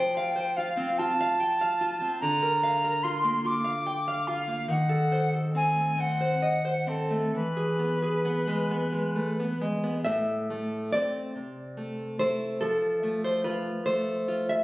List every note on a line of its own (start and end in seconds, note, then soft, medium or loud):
0.00 2.01 F3 medium
0.00 0.17 C5 medium
0.00 0.58 G5 loud
0.17 0.49 F5 medium
0.36 0.69 C5 medium
0.56 0.91 F4 medium
0.56 1.00 F5 loud
0.77 1.11 C4 medium
0.98 1.32 F4 medium
0.98 2.20 A5 loud
1.21 1.40 F5 medium
1.40 1.61 G5 medium
1.61 1.94 F5 medium
1.81 2.14 F4 medium
2.01 2.22 C4 medium
2.21 4.66 D3 medium
2.21 3.05 A#5 loud
2.43 2.75 A#4 medium
2.63 2.96 F5 medium
2.85 3.17 A#4 medium
3.03 3.38 F4 medium
3.03 3.48 C6 loud
3.25 3.58 A#3 medium
3.45 3.78 F4 medium
3.45 4.29 D6 loud
3.65 3.86 F5 medium
3.87 4.07 G5 medium
4.08 4.41 F5 medium
4.27 4.61 F4 medium
4.27 4.69 F5 loud
4.47 4.69 A#3 medium
4.68 7.29 D#3 medium
4.68 5.30 F#5 loud
4.89 5.25 A4 medium
5.12 5.47 C5 medium
5.34 5.69 A4 medium
5.55 5.90 C4 medium
5.55 6.01 G#5 loud
5.76 6.12 A3 medium
5.98 6.34 C4 medium
5.98 6.90 F#5 medium
6.21 6.56 C5 medium
6.42 6.65 D#5 medium
6.65 7.01 C5 medium
6.87 7.24 C4 medium
6.87 7.34 A4 medium
7.11 7.34 A3 medium
7.35 10.03 E3 medium
7.35 9.59 B4 medium
7.57 7.94 G#4 medium
7.79 8.17 B3 medium
8.02 8.39 G#4 medium
8.25 8.62 B3 medium
8.47 8.85 G#3 medium
8.71 9.08 B3 medium
8.93 9.30 G#3 medium
9.16 9.39 A3 soft
9.40 9.76 B3 medium
9.61 9.98 G#3 medium
9.84 10.06 B3 medium
10.05 10.93 A2 medium
10.05 10.89 E5 loud
10.50 10.92 A3 medium
10.93 11.32 A3 soft
10.93 11.33 C4 medium
10.93 12.15 D5 medium
11.36 12.57 C3 medium
11.77 12.18 A3 medium
12.19 12.57 A3 medium
12.19 12.58 E4 medium
12.19 12.60 C5 medium
12.61 14.64 F3 medium
12.61 13.21 A4 medium
13.03 13.70 A3 medium
13.24 13.44 C5 medium
13.44 14.11 F4 medium
13.44 13.85 B4 medium
13.86 14.53 A3 medium
13.86 14.46 C5 medium
14.28 14.64 F4 medium
14.49 14.64 E5 medium